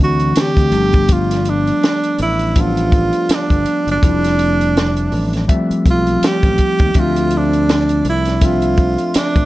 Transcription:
0.00 0.32 D2 medium
0.00 0.72 D3 medium
0.00 0.75 E3 medium
0.00 0.74 F#3 medium
0.00 0.73 A3 medium
0.00 0.75 C4 medium
0.00 0.73 D4 medium
0.00 0.42 F#4 loud
0.20 closed hi-hat soft
0.36 muted fingered electric bass stroke soft
0.36 snare loud
0.36 closed hi-hat loud
0.40 1.14 G4 loud
0.57 0.71 D2 medium
0.57 kick medium
0.57 closed hi-hat medium
0.72 1.70 G1 loud
0.72 1.99 F3 medium
0.72 1.99 G3 medium
0.72 2.00 A3 medium
0.72 2.00 B3 medium
0.72 2.00 D4 medium
0.72 closed hi-hat medium
0.93 kick loud
0.93 closed hi-hat medium
1.09 1.51 F4 loud
1.09 kick loud
1.09 closed hi-hat loud
1.31 snare soft
1.31 closed hi-hat medium
1.45 closed hi-hat medium
1.50 2.21 D4 medium
1.67 closed hi-hat medium
1.83 snare loud
1.83 closed hi-hat medium
2.04 closed hi-hat soft
2.19 3.10 A1 loud
2.19 2.62 E4 medium
2.19 closed hi-hat medium
2.39 closed hi-hat soft
2.56 3.83 F3 medium
2.56 3.83 G3 medium
2.56 3.83 A3 medium
2.56 3.84 B3 medium
2.56 3.84 D4 medium
2.56 kick medium
2.56 closed hi-hat medium
2.61 3.36 F4 loud
2.77 closed hi-hat medium
2.92 kick loud
2.92 closed hi-hat medium
3.13 closed hi-hat soft
3.29 muted fingered electric bass stroke soft
3.29 snare loud
3.29 closed hi-hat loud
3.35 3.90 D4 medium
3.50 3.64 G1 medium
3.50 kick medium
3.50 closed hi-hat soft
3.66 closed hi-hat medium
3.87 4.01 F#1 medium
3.87 closed hi-hat medium
3.91 5.58 D4 loud
4.03 5.08 F1 medium
4.03 5.30 F3 medium
4.03 5.30 G3 medium
4.03 5.30 A3 medium
4.03 5.30 C4 medium
4.03 5.30 E4 medium
4.03 kick loud
4.03 closed hi-hat medium
4.24 snare soft
4.24 closed hi-hat medium
4.39 closed hi-hat medium
4.61 closed hi-hat medium
4.77 snare loud
4.77 closed hi-hat medium
4.97 closed hi-hat medium
5.12 5.45 A1 medium
5.12 open hi-hat soft
5.33 snare soft
5.33 closed hi-hat soft
5.48 6.76 F3 medium
5.48 6.76 G3 medium
5.48 6.76 A3 medium
5.48 6.76 C4 medium
5.48 6.76 E5 medium
5.48 kick medium
5.48 closed hi-hat medium
5.70 muted fingered electric bass stroke soft
5.70 closed hi-hat medium
5.86 6.18 B1 medium
5.86 kick medium
5.86 closed hi-hat medium
5.90 6.28 F4 medium
6.07 closed hi-hat soft
6.23 7.01 G4 loud
6.23 snare loud
6.23 closed hi-hat loud
6.43 6.57 A1 medium
6.43 kick medium
6.43 closed hi-hat soft
6.58 kick medium
6.58 closed hi-hat medium
6.79 6.94 D#2 medium
6.79 kick loud
6.79 closed hi-hat medium
6.94 8.01 D2 loud
6.94 8.22 F3 medium
6.94 8.23 A3 medium
6.94 8.23 C4 medium
6.94 8.23 D4 medium
6.94 8.23 E5 medium
6.94 kick loud
6.94 closed hi-hat medium
7.00 7.39 F4 loud
7.16 closed hi-hat medium
7.31 closed hi-hat medium
7.38 8.08 D4 medium
7.53 closed hi-hat medium
7.69 snare loud
7.69 closed hi-hat medium
7.89 closed hi-hat medium
8.05 8.95 C2 medium
8.05 closed hi-hat medium
8.10 8.47 E4 medium
8.25 snare soft
8.25 closed hi-hat soft
8.41 9.45 F3 medium
8.41 9.45 A3 medium
8.41 9.45 C4 medium
8.41 9.45 D4 medium
8.41 9.45 E5 medium
8.41 kick medium
8.41 closed hi-hat medium
8.45 9.17 F4 loud
8.62 closed hi-hat medium
8.77 kick medium
8.77 closed hi-hat soft
8.98 closed hi-hat soft
9.14 9.45 D4 medium
9.14 muted fingered electric bass stroke soft
9.14 snare loud
9.14 closed hi-hat loud
9.36 9.45 A1 medium
9.36 kick medium
9.36 closed hi-hat soft

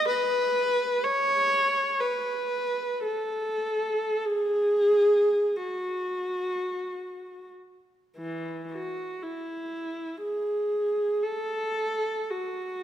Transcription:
0.09 1.03 B4 loud
1.04 2.01 C#5 loud
2.01 3.04 B4 medium
3.03 4.22 A4 medium
4.25 5.56 G#4 loud
5.56 7.49 F#4 medium
8.17 8.70 E3 medium
8.71 9.23 F#4 medium
9.22 10.23 E4 medium
10.22 11.22 G#4 medium
11.23 12.31 A4 medium
12.30 12.83 F#4 medium

